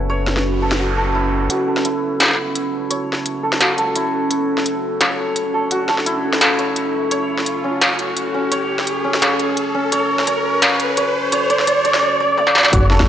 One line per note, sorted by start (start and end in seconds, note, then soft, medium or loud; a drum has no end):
0.00 1.48 F#1 medium
0.00 12.03 C#4 medium
0.00 1.14 E4 loud
0.00 0.79 F#4 medium
0.00 12.03 F#4 medium
0.00 0.62 A4 medium
0.00 2.63 B4 medium
0.10 2.65 C#5 loud
0.10 noise sweep medium
0.27 snare soft
0.37 snare soft
0.62 0.97 A4 medium
0.71 snare medium
0.80 1.50 F#4 medium
0.97 1.67 A4 medium
1.15 1.84 E4 loud
1.50 2.11 F#1 loud
1.50 3.60 F#4 medium
1.50 closed hi-hat medium
1.50 riser medium
1.68 3.43 A4 medium
1.77 snare soft
1.85 3.95 E4 loud
1.85 closed hi-hat medium
2.20 3.07 G1 medium
2.20 snare loud
2.20 closed hi-hat medium
2.23 snare medium
2.26 12.03 A4 medium
2.26 snare medium
2.28 snare medium
2.31 snare medium
2.33 snare soft
2.36 snare soft
2.55 closed hi-hat medium
2.90 5.01 C#5 loud
2.90 closed hi-hat medium
3.13 snare soft
3.25 3.69 F#1 loud
3.25 closed hi-hat medium
3.43 3.78 A4 medium
3.52 snare medium
3.61 5.71 F#4 medium
3.61 snare loud
3.61 closed hi-hat medium
3.78 3.94 C#2 medium
3.78 5.54 A4 medium
3.78 closed hi-hat soft
3.96 6.06 E4 medium
3.96 closed hi-hat medium
4.31 4.92 F#1 loud
4.31 closed hi-hat medium
4.58 snare soft
4.66 closed hi-hat medium
5.01 5.88 G1 medium
5.01 6.58 C#5 loud
5.01 snare loud
5.01 closed hi-hat medium
5.36 closed hi-hat medium
5.54 5.88 A4 medium
5.71 8.96 F#4 medium
5.71 closed hi-hat medium
5.89 8.82 A4 medium
5.89 snare soft
5.98 snare soft
6.06 6.50 F#1 loud
6.06 9.54 E4 loud
6.06 closed hi-hat medium
6.33 snare medium
6.41 snare loud
6.41 closed hi-hat medium
6.59 7.11 C#5 medium
6.59 closed hi-hat soft
6.76 closed hi-hat medium
6.94 7.10 C#2 loud
7.11 7.72 F#1 loud
7.11 7.81 C#5 loud
7.11 closed hi-hat medium
7.38 snare soft
7.46 closed hi-hat medium
7.64 8.34 C#4 medium
7.81 8.68 G1 medium
7.81 8.51 C#5 medium
7.81 snare loud
7.81 closed hi-hat medium
7.99 closed hi-hat soft
8.17 closed hi-hat medium
8.34 9.04 C#4 medium
8.52 9.22 C#5 medium
8.52 closed hi-hat medium
8.79 snare soft
8.87 9.30 F#1 loud
8.87 closed hi-hat medium
9.04 9.74 C#4 medium
9.14 snare medium
9.22 9.92 C#5 loud
9.22 snare loud
9.22 closed hi-hat medium
9.39 9.56 C#2 medium
9.39 closed hi-hat soft
9.57 closed hi-hat medium
9.75 13.09 C#4 medium
9.92 10.53 F#1 loud
9.92 10.27 C#5 loud
9.92 closed hi-hat medium
10.19 snare soft
10.27 10.62 C#5 loud
10.27 closed hi-hat medium
10.62 11.49 G1 medium
10.62 10.97 C#5 loud
10.62 snare loud
10.62 closed hi-hat medium
10.80 closed hi-hat soft
10.97 11.32 C#5 loud
10.97 closed hi-hat medium
11.32 11.50 C#5 loud
11.32 closed hi-hat medium
11.50 11.67 C#5 loud
11.50 closed hi-hat soft
11.59 snare soft
11.67 12.03 F#1 loud
11.67 11.85 C#5 loud
11.67 closed hi-hat medium
11.85 12.02 C#5 loud
11.85 closed hi-hat soft
11.94 snare medium
12.03 12.20 C#5 loud
12.20 12.38 C#5 loud
12.38 12.55 C#5 loud
12.38 high tom medium
12.47 snare medium
12.55 13.09 C#5 loud
12.55 snare medium
12.58 snare medium
12.61 snare medium
12.63 snare soft
12.63 snare medium
12.66 snare soft
12.68 snare soft
12.70 13.09 F#1 loud
12.70 13.09 F#4 medium
12.70 kick loud
12.70 snare soft
12.70 closed hi-hat medium
12.70 sub drop medium
12.90 13.09 A4 medium
12.90 snare soft
13.00 kick medium
13.00 snare soft